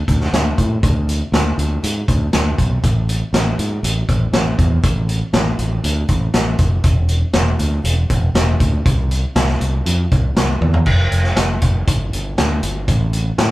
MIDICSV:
0, 0, Header, 1, 3, 480
1, 0, Start_track
1, 0, Tempo, 502513
1, 790, Time_signature, 4, 2, 24, 8
1, 12906, End_track
2, 0, Start_track
2, 0, Title_t, "Fingered electric bass"
2, 0, Program_c, 0, 33
2, 79, Note_on_c, 0, 38, 90
2, 256, Note_off_c, 0, 38, 0
2, 314, Note_on_c, 0, 38, 80
2, 492, Note_off_c, 0, 38, 0
2, 555, Note_on_c, 0, 45, 78
2, 733, Note_off_c, 0, 45, 0
2, 793, Note_on_c, 0, 38, 88
2, 1151, Note_off_c, 0, 38, 0
2, 1262, Note_on_c, 0, 38, 85
2, 1444, Note_off_c, 0, 38, 0
2, 1506, Note_on_c, 0, 38, 79
2, 1686, Note_off_c, 0, 38, 0
2, 1751, Note_on_c, 0, 44, 78
2, 1929, Note_off_c, 0, 44, 0
2, 1988, Note_on_c, 0, 38, 85
2, 2167, Note_off_c, 0, 38, 0
2, 2235, Note_on_c, 0, 38, 83
2, 2411, Note_off_c, 0, 38, 0
2, 2469, Note_on_c, 0, 35, 79
2, 2647, Note_off_c, 0, 35, 0
2, 2711, Note_on_c, 0, 33, 85
2, 3068, Note_off_c, 0, 33, 0
2, 3178, Note_on_c, 0, 33, 78
2, 3360, Note_off_c, 0, 33, 0
2, 3425, Note_on_c, 0, 44, 77
2, 3604, Note_off_c, 0, 44, 0
2, 3658, Note_on_c, 0, 33, 85
2, 3840, Note_off_c, 0, 33, 0
2, 3905, Note_on_c, 0, 33, 81
2, 4084, Note_off_c, 0, 33, 0
2, 4134, Note_on_c, 0, 33, 80
2, 4317, Note_off_c, 0, 33, 0
2, 4379, Note_on_c, 0, 40, 78
2, 4560, Note_off_c, 0, 40, 0
2, 4618, Note_on_c, 0, 33, 84
2, 4979, Note_off_c, 0, 33, 0
2, 5092, Note_on_c, 0, 33, 81
2, 5275, Note_off_c, 0, 33, 0
2, 5337, Note_on_c, 0, 33, 88
2, 5519, Note_off_c, 0, 33, 0
2, 5575, Note_on_c, 0, 38, 86
2, 5758, Note_off_c, 0, 38, 0
2, 5815, Note_on_c, 0, 33, 88
2, 5998, Note_off_c, 0, 33, 0
2, 6057, Note_on_c, 0, 33, 79
2, 6239, Note_off_c, 0, 33, 0
2, 6292, Note_on_c, 0, 29, 83
2, 6475, Note_off_c, 0, 29, 0
2, 6531, Note_on_c, 0, 28, 83
2, 6895, Note_off_c, 0, 28, 0
2, 7007, Note_on_c, 0, 28, 85
2, 7193, Note_off_c, 0, 28, 0
2, 7252, Note_on_c, 0, 38, 84
2, 7436, Note_off_c, 0, 38, 0
2, 7488, Note_on_c, 0, 28, 83
2, 7674, Note_off_c, 0, 28, 0
2, 7738, Note_on_c, 0, 28, 88
2, 7920, Note_off_c, 0, 28, 0
2, 7970, Note_on_c, 0, 28, 83
2, 8155, Note_off_c, 0, 28, 0
2, 8214, Note_on_c, 0, 38, 81
2, 8398, Note_off_c, 0, 38, 0
2, 8458, Note_on_c, 0, 36, 84
2, 8820, Note_off_c, 0, 36, 0
2, 8935, Note_on_c, 0, 36, 84
2, 9118, Note_off_c, 0, 36, 0
2, 9175, Note_on_c, 0, 36, 80
2, 9358, Note_off_c, 0, 36, 0
2, 9416, Note_on_c, 0, 41, 83
2, 9599, Note_off_c, 0, 41, 0
2, 9663, Note_on_c, 0, 36, 85
2, 9844, Note_off_c, 0, 36, 0
2, 9886, Note_on_c, 0, 36, 74
2, 10074, Note_off_c, 0, 36, 0
2, 10135, Note_on_c, 0, 40, 79
2, 10319, Note_off_c, 0, 40, 0
2, 10382, Note_on_c, 0, 29, 87
2, 10580, Note_off_c, 0, 29, 0
2, 10617, Note_on_c, 0, 29, 73
2, 10817, Note_off_c, 0, 29, 0
2, 10855, Note_on_c, 0, 29, 87
2, 11056, Note_off_c, 0, 29, 0
2, 11102, Note_on_c, 0, 29, 82
2, 11300, Note_off_c, 0, 29, 0
2, 11341, Note_on_c, 0, 31, 82
2, 11540, Note_off_c, 0, 31, 0
2, 11587, Note_on_c, 0, 31, 84
2, 11784, Note_off_c, 0, 31, 0
2, 11828, Note_on_c, 0, 38, 82
2, 12025, Note_off_c, 0, 38, 0
2, 12066, Note_on_c, 0, 31, 86
2, 12264, Note_off_c, 0, 31, 0
2, 12304, Note_on_c, 0, 33, 86
2, 12699, Note_off_c, 0, 33, 0
2, 12782, Note_on_c, 0, 45, 85
2, 12906, Note_off_c, 0, 45, 0
2, 12906, End_track
3, 0, Start_track
3, 0, Title_t, "Drums"
3, 77, Note_on_c, 9, 36, 73
3, 79, Note_on_c, 9, 42, 52
3, 172, Note_off_c, 9, 36, 0
3, 174, Note_off_c, 9, 42, 0
3, 197, Note_on_c, 9, 38, 32
3, 292, Note_off_c, 9, 38, 0
3, 321, Note_on_c, 9, 38, 96
3, 321, Note_on_c, 9, 42, 74
3, 416, Note_off_c, 9, 38, 0
3, 416, Note_off_c, 9, 42, 0
3, 556, Note_on_c, 9, 36, 80
3, 556, Note_on_c, 9, 42, 54
3, 651, Note_off_c, 9, 42, 0
3, 652, Note_off_c, 9, 36, 0
3, 793, Note_on_c, 9, 42, 69
3, 795, Note_on_c, 9, 36, 102
3, 889, Note_off_c, 9, 42, 0
3, 890, Note_off_c, 9, 36, 0
3, 1038, Note_on_c, 9, 42, 54
3, 1134, Note_off_c, 9, 42, 0
3, 1275, Note_on_c, 9, 38, 102
3, 1275, Note_on_c, 9, 42, 74
3, 1371, Note_off_c, 9, 38, 0
3, 1371, Note_off_c, 9, 42, 0
3, 1516, Note_on_c, 9, 42, 54
3, 1612, Note_off_c, 9, 42, 0
3, 1753, Note_on_c, 9, 42, 83
3, 1848, Note_off_c, 9, 42, 0
3, 1989, Note_on_c, 9, 36, 80
3, 1990, Note_on_c, 9, 42, 54
3, 2085, Note_off_c, 9, 36, 0
3, 2085, Note_off_c, 9, 42, 0
3, 2225, Note_on_c, 9, 38, 93
3, 2225, Note_on_c, 9, 42, 77
3, 2321, Note_off_c, 9, 38, 0
3, 2321, Note_off_c, 9, 42, 0
3, 2469, Note_on_c, 9, 36, 79
3, 2470, Note_on_c, 9, 42, 57
3, 2564, Note_off_c, 9, 36, 0
3, 2566, Note_off_c, 9, 42, 0
3, 2710, Note_on_c, 9, 36, 90
3, 2710, Note_on_c, 9, 42, 79
3, 2805, Note_off_c, 9, 36, 0
3, 2805, Note_off_c, 9, 42, 0
3, 2950, Note_on_c, 9, 42, 61
3, 3046, Note_off_c, 9, 42, 0
3, 3190, Note_on_c, 9, 38, 98
3, 3190, Note_on_c, 9, 42, 82
3, 3285, Note_off_c, 9, 38, 0
3, 3285, Note_off_c, 9, 42, 0
3, 3428, Note_on_c, 9, 42, 59
3, 3523, Note_off_c, 9, 42, 0
3, 3668, Note_on_c, 9, 42, 82
3, 3764, Note_off_c, 9, 42, 0
3, 3904, Note_on_c, 9, 36, 81
3, 3905, Note_on_c, 9, 42, 57
3, 4000, Note_off_c, 9, 36, 0
3, 4000, Note_off_c, 9, 42, 0
3, 4140, Note_on_c, 9, 38, 97
3, 4140, Note_on_c, 9, 42, 76
3, 4235, Note_off_c, 9, 38, 0
3, 4235, Note_off_c, 9, 42, 0
3, 4382, Note_on_c, 9, 36, 82
3, 4382, Note_on_c, 9, 42, 55
3, 4477, Note_off_c, 9, 36, 0
3, 4477, Note_off_c, 9, 42, 0
3, 4617, Note_on_c, 9, 42, 73
3, 4620, Note_on_c, 9, 36, 101
3, 4712, Note_off_c, 9, 42, 0
3, 4716, Note_off_c, 9, 36, 0
3, 4860, Note_on_c, 9, 42, 51
3, 4955, Note_off_c, 9, 42, 0
3, 5097, Note_on_c, 9, 38, 111
3, 5097, Note_on_c, 9, 42, 75
3, 5192, Note_off_c, 9, 38, 0
3, 5192, Note_off_c, 9, 42, 0
3, 5337, Note_on_c, 9, 42, 55
3, 5432, Note_off_c, 9, 42, 0
3, 5578, Note_on_c, 9, 42, 74
3, 5674, Note_off_c, 9, 42, 0
3, 5812, Note_on_c, 9, 42, 55
3, 5816, Note_on_c, 9, 36, 77
3, 5908, Note_off_c, 9, 42, 0
3, 5912, Note_off_c, 9, 36, 0
3, 6054, Note_on_c, 9, 38, 97
3, 6054, Note_on_c, 9, 42, 78
3, 6149, Note_off_c, 9, 38, 0
3, 6149, Note_off_c, 9, 42, 0
3, 6290, Note_on_c, 9, 42, 60
3, 6295, Note_on_c, 9, 36, 82
3, 6385, Note_off_c, 9, 42, 0
3, 6390, Note_off_c, 9, 36, 0
3, 6530, Note_on_c, 9, 42, 75
3, 6535, Note_on_c, 9, 36, 94
3, 6625, Note_off_c, 9, 42, 0
3, 6630, Note_off_c, 9, 36, 0
3, 6767, Note_on_c, 9, 42, 62
3, 6863, Note_off_c, 9, 42, 0
3, 7006, Note_on_c, 9, 38, 105
3, 7006, Note_on_c, 9, 42, 84
3, 7102, Note_off_c, 9, 38, 0
3, 7102, Note_off_c, 9, 42, 0
3, 7251, Note_on_c, 9, 42, 62
3, 7347, Note_off_c, 9, 42, 0
3, 7494, Note_on_c, 9, 42, 86
3, 7590, Note_off_c, 9, 42, 0
3, 7735, Note_on_c, 9, 42, 59
3, 7737, Note_on_c, 9, 36, 81
3, 7830, Note_off_c, 9, 42, 0
3, 7833, Note_off_c, 9, 36, 0
3, 7977, Note_on_c, 9, 38, 102
3, 7977, Note_on_c, 9, 42, 85
3, 8073, Note_off_c, 9, 38, 0
3, 8073, Note_off_c, 9, 42, 0
3, 8215, Note_on_c, 9, 42, 60
3, 8218, Note_on_c, 9, 36, 81
3, 8311, Note_off_c, 9, 42, 0
3, 8313, Note_off_c, 9, 36, 0
3, 8458, Note_on_c, 9, 42, 77
3, 8460, Note_on_c, 9, 36, 103
3, 8554, Note_off_c, 9, 42, 0
3, 8556, Note_off_c, 9, 36, 0
3, 8701, Note_on_c, 9, 42, 54
3, 8796, Note_off_c, 9, 42, 0
3, 8938, Note_on_c, 9, 38, 102
3, 8938, Note_on_c, 9, 42, 78
3, 9034, Note_off_c, 9, 38, 0
3, 9034, Note_off_c, 9, 42, 0
3, 9057, Note_on_c, 9, 38, 31
3, 9152, Note_off_c, 9, 38, 0
3, 9179, Note_on_c, 9, 42, 55
3, 9274, Note_off_c, 9, 42, 0
3, 9420, Note_on_c, 9, 42, 80
3, 9515, Note_off_c, 9, 42, 0
3, 9662, Note_on_c, 9, 42, 52
3, 9665, Note_on_c, 9, 36, 81
3, 9757, Note_off_c, 9, 42, 0
3, 9761, Note_off_c, 9, 36, 0
3, 9901, Note_on_c, 9, 38, 107
3, 9901, Note_on_c, 9, 42, 77
3, 9997, Note_off_c, 9, 38, 0
3, 9997, Note_off_c, 9, 42, 0
3, 10141, Note_on_c, 9, 48, 59
3, 10236, Note_off_c, 9, 48, 0
3, 10256, Note_on_c, 9, 43, 74
3, 10351, Note_off_c, 9, 43, 0
3, 10372, Note_on_c, 9, 49, 99
3, 10382, Note_on_c, 9, 36, 94
3, 10467, Note_off_c, 9, 49, 0
3, 10477, Note_off_c, 9, 36, 0
3, 10619, Note_on_c, 9, 42, 65
3, 10715, Note_off_c, 9, 42, 0
3, 10735, Note_on_c, 9, 38, 29
3, 10831, Note_off_c, 9, 38, 0
3, 10857, Note_on_c, 9, 38, 102
3, 10857, Note_on_c, 9, 42, 87
3, 10952, Note_off_c, 9, 38, 0
3, 10952, Note_off_c, 9, 42, 0
3, 11095, Note_on_c, 9, 42, 65
3, 11102, Note_on_c, 9, 36, 76
3, 11191, Note_off_c, 9, 42, 0
3, 11198, Note_off_c, 9, 36, 0
3, 11343, Note_on_c, 9, 42, 91
3, 11344, Note_on_c, 9, 36, 103
3, 11438, Note_off_c, 9, 42, 0
3, 11440, Note_off_c, 9, 36, 0
3, 11588, Note_on_c, 9, 42, 62
3, 11683, Note_off_c, 9, 42, 0
3, 11826, Note_on_c, 9, 38, 95
3, 11826, Note_on_c, 9, 42, 84
3, 11921, Note_off_c, 9, 38, 0
3, 11921, Note_off_c, 9, 42, 0
3, 12062, Note_on_c, 9, 42, 64
3, 12157, Note_off_c, 9, 42, 0
3, 12301, Note_on_c, 9, 42, 80
3, 12303, Note_on_c, 9, 36, 100
3, 12397, Note_off_c, 9, 42, 0
3, 12398, Note_off_c, 9, 36, 0
3, 12541, Note_on_c, 9, 42, 59
3, 12637, Note_off_c, 9, 42, 0
3, 12784, Note_on_c, 9, 38, 105
3, 12784, Note_on_c, 9, 42, 79
3, 12880, Note_off_c, 9, 38, 0
3, 12880, Note_off_c, 9, 42, 0
3, 12906, End_track
0, 0, End_of_file